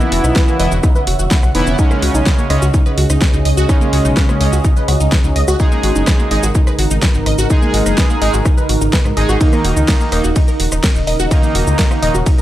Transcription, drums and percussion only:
0.00 shaker soft
0.12 open hi-hat loud
0.24 cross-stick medium
0.24 shaker medium
0.36 kick loud
0.36 snare loud
0.36 shaker medium
0.48 shaker soft
0.60 open hi-hat loud
0.72 shaker medium
0.83 kick loud
0.83 cross-stick medium
0.83 shaker medium
0.95 shaker soft
1.07 open hi-hat loud
1.19 shaker medium
1.31 kick loud
1.31 snare loud
1.31 shaker medium
1.43 cross-stick medium
1.43 shaker soft
1.55 open hi-hat medium
1.67 shaker medium
1.79 kick loud
1.79 shaker medium
1.91 cross-stick medium
1.91 shaker soft
2.02 open hi-hat loud
2.15 shaker medium
2.26 kick loud
2.26 snare loud
2.26 shaker medium
2.38 shaker soft
2.50 cross-stick medium
2.50 open hi-hat medium
2.62 shaker medium
2.74 kick loud
2.74 shaker medium
2.86 shaker soft
2.98 open hi-hat loud
3.10 cross-stick medium
3.10 shaker medium
3.22 kick loud
3.22 snare loud
3.22 shaker medium
3.34 shaker soft
3.45 open hi-hat medium
3.58 shaker medium
3.69 kick loud
3.69 cross-stick medium
3.69 shaker medium
3.81 shaker soft
3.93 open hi-hat loud
4.05 shaker medium
4.17 kick loud
4.17 snare loud
4.17 shaker medium
4.29 cross-stick medium
4.29 shaker soft
4.41 open hi-hat medium
4.53 shaker medium
4.64 kick loud
4.64 shaker medium
4.77 shaker soft
4.88 cross-stick medium
4.88 open hi-hat loud
5.00 shaker medium
5.12 kick loud
5.12 snare loud
5.12 shaker medium
5.24 shaker soft
5.36 open hi-hat medium
5.48 cross-stick medium
5.48 shaker medium
5.60 kick loud
5.60 shaker medium
5.72 shaker soft
5.83 open hi-hat loud
5.96 shaker medium
6.07 kick loud
6.07 cross-stick medium
6.07 snare loud
6.07 shaker medium
6.19 shaker soft
6.31 open hi-hat medium
6.43 shaker medium
6.55 kick loud
6.55 shaker medium
6.67 cross-stick medium
6.67 shaker soft
6.79 open hi-hat loud
6.91 shaker medium
7.02 kick loud
7.02 snare loud
7.02 shaker medium
7.15 shaker soft
7.26 cross-stick medium
7.26 open hi-hat medium
7.38 shaker medium
7.50 kick loud
7.50 shaker medium
7.62 shaker soft
7.74 open hi-hat loud
7.86 cross-stick soft
7.86 shaker medium
7.98 kick loud
7.98 snare loud
7.98 shaker medium
8.10 shaker soft
8.22 open hi-hat medium
8.34 shaker medium
8.45 kick loud
8.45 cross-stick medium
8.45 shaker medium
8.58 shaker soft
8.69 open hi-hat loud
8.81 shaker medium
8.93 kick loud
8.93 snare loud
8.93 shaker medium
9.05 cross-stick medium
9.05 shaker soft
9.17 open hi-hat medium
9.29 shaker medium
9.41 kick loud
9.41 ride medium
9.41 shaker medium
9.53 cross-stick medium
9.53 shaker soft
9.65 open hi-hat loud
9.77 shaker medium
9.88 kick loud
9.88 snare loud
9.88 ride medium
9.88 shaker medium
10.00 shaker soft
10.12 cross-stick medium
10.12 open hi-hat loud
10.24 shaker medium
10.36 kick loud
10.36 ride medium
10.36 shaker medium
10.48 shaker soft
10.60 open hi-hat loud
10.72 cross-stick medium
10.72 shaker medium
10.84 kick loud
10.84 snare loud
10.84 ride medium
10.84 shaker medium
10.96 shaker soft
11.07 open hi-hat medium
11.20 shaker medium
11.31 kick loud
11.31 cross-stick medium
11.31 ride medium
11.31 shaker medium
11.43 shaker soft
11.55 open hi-hat loud
11.67 shaker medium
11.79 kick loud
11.79 snare loud
11.79 ride medium
11.79 shaker medium
11.91 cross-stick medium
11.91 shaker soft
12.03 open hi-hat loud
12.15 shaker medium
12.26 kick loud
12.26 ride medium
12.26 shaker medium
12.39 shaker soft

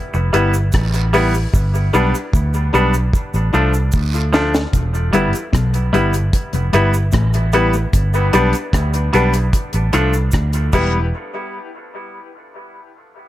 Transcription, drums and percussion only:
0.14 cabasa soft
0.34 closed hi-hat medium
0.34 cabasa medium
0.54 cabasa medium
0.72 kick loud
0.72 cross-stick loud
0.72 closed hi-hat medium
0.72 cabasa medium
0.72 long guiro medium
0.94 closed hi-hat medium
0.94 cabasa medium
1.14 open hi-hat medium
1.14 cabasa soft
1.34 cabasa medium
1.54 kick loud
1.54 cabasa medium
1.75 cabasa medium
1.94 cabasa medium
2.15 cabasa medium
2.33 kick loud
2.33 cabasa medium
2.54 cabasa soft
2.74 cabasa medium
2.94 cabasa medium
3.13 kick loud
3.13 cabasa medium
3.34 cabasa soft
3.54 cabasa medium
3.74 cabasa medium
3.92 kick loud
3.92 cabasa medium
3.92 long guiro medium
4.14 cabasa soft
4.33 snare loud
4.33 cabasa medium
4.54 snare medium
4.54 cabasa medium
4.73 kick loud
4.73 closed hi-hat loud
4.73 cabasa medium
4.95 cabasa medium
5.13 closed hi-hat medium
5.13 cabasa medium
5.33 closed hi-hat soft
5.33 cabasa medium
5.53 kick loud
5.53 cross-stick loud
5.53 closed hi-hat medium
5.53 cabasa medium
5.74 closed hi-hat soft
5.74 cabasa medium
5.94 closed hi-hat medium
5.94 cabasa soft
6.13 closed hi-hat medium
6.13 cabasa medium
6.33 kick loud
6.33 closed hi-hat loud
6.33 cabasa medium
6.53 closed hi-hat medium
6.53 cabasa soft
6.73 closed hi-hat medium
6.73 cabasa medium
6.94 cabasa medium
7.12 kick loud
7.12 cross-stick loud
7.12 closed hi-hat medium
7.12 cabasa medium
7.33 closed hi-hat medium
7.33 cabasa medium
7.53 closed hi-hat medium
7.53 cabasa soft
7.73 cabasa medium
7.93 kick loud
7.93 closed hi-hat loud
7.93 cabasa medium
8.14 cabasa soft
8.33 closed hi-hat medium
8.33 cabasa medium
8.53 closed hi-hat soft
8.53 cabasa medium
8.73 kick loud
8.73 cross-stick loud
8.73 closed hi-hat medium
8.73 cabasa medium
8.94 closed hi-hat medium
8.94 cabasa medium
9.13 closed hi-hat medium
9.13 cabasa soft
9.33 closed hi-hat medium
9.33 cabasa medium
9.53 kick loud
9.53 closed hi-hat loud
9.53 cabasa medium
9.73 closed hi-hat medium
9.73 cabasa soft
9.93 closed hi-hat medium
9.93 cabasa medium
10.13 cabasa medium
10.31 kick loud
10.31 cross-stick loud
10.31 closed hi-hat medium
10.31 cabasa medium
10.53 closed hi-hat medium
10.53 cabasa medium
10.73 kick loud
10.73 crash medium
10.73 cabasa medium

